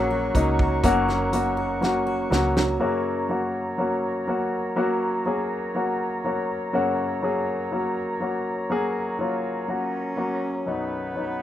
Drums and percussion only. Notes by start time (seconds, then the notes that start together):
0.35 kick, closed hi-hat
0.59 kick
0.84 kick, closed hi-hat
1.09 snare
1.33 closed hi-hat
1.83 snare
2.32 snare
2.57 snare